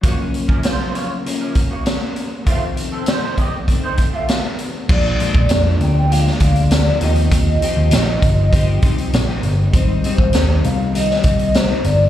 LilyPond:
<<
  \new Staff \with { instrumentName = "Soft synth lead" } { \time 4/4 \key ges \lydian \tempo 4 = 99 r1 | r1 | \key bes \mixolydian d''4. g''8 f''8 f''8 d''8 ees''8 | ees''2.~ ees''8 r8 |
c''4. f''8 ees''8 ees''8 c''8 d''8 | }
  \new Staff \with { instrumentName = "Clean electric guitar" } { \time 4/4 \key ges \lydian <bes ges'>16 r8 <des' bes'>16 <f' c''>8 <f' des''>16 r8 <des' bes'>16 r16 <bes ges'>8 r8. | <a f'>16 r8 <c' a'>16 <ees' c''>8 <g' ees''>16 r8 <ees' c''>16 r16 <a f'>8 r8. | \key bes \mixolydian r1 | r1 |
r1 | }
  \new Staff \with { instrumentName = "Clean electric guitar" } { \time 4/4 \key ges \lydian <ges, des f bes des'>2 <des f bes des'>8 <bes des'>4. | <f, c ees a c'>2 <c ees a c'>8 <ees a c'>4. | \key bes \mixolydian <bes, f aes d'>8 <bes, f aes d'>8 <bes, f aes d'>4 <bes, f aes d'>8 <bes, f aes d'>8. <f aes d'>16 <ees f c' ees' g'>8~ | <ees f c' ees' g'>8 <ees f c' ees' g'>8 <f c' ees' g'>4 <f c' ees' g'>8 <f c' ees' g'>8. <c' ees' g'>8. |
<ees g c' ees'>8 <aes, ees g c' ees'>8 <ees g c' ees'>4 <ees g c' ees'>8 <ees g c' ees'>8. <g c' ees'>8. | }
  \new Staff \with { instrumentName = "Picked electric bass" } { \clef bass \time 4/4 \key ges \lydian r1 | r1 | \key bes \mixolydian bes,,8 r16 bes,,16 f,8 d,4 d,4 ees,8 | ees,8 r16 ees,16 bes,,8 g,,4 c,8 bes,,8 g,,8 |
aes,,8 r16 aes,,16 ees,8 c,4 c,4 g,,8 | }
  \new DrumStaff \with { instrumentName = "Drums" } \drummode { \time 4/4 <hh bd>8 hh16 bd16 <hh sn>8 hh8 hh8 <hh bd>8 <hh sn>8 hh8 | <hh bd>8 hh8 <hh sn>8 <hh bd>8 <hh bd>8 <hh bd>8 <hh sn>8 hh8 | <cymc bd>8 hh16 bd16 <hh sn>8 hh8 hh16 sn16 <hh bd>16 hh16 <hh sn>8 hh16 hh16 | <hh bd>8 hh8 <hh sn>8 <hh bd>8 <hh bd>8 <hh bd>16 hh16 <hh sn>8 hh8 |
<hh bd>8 hh16 bd16 <hh sn>8 hh8 hh16 sn16 <hh bd>16 hh16 <hh sn>8 hh8 | }
>>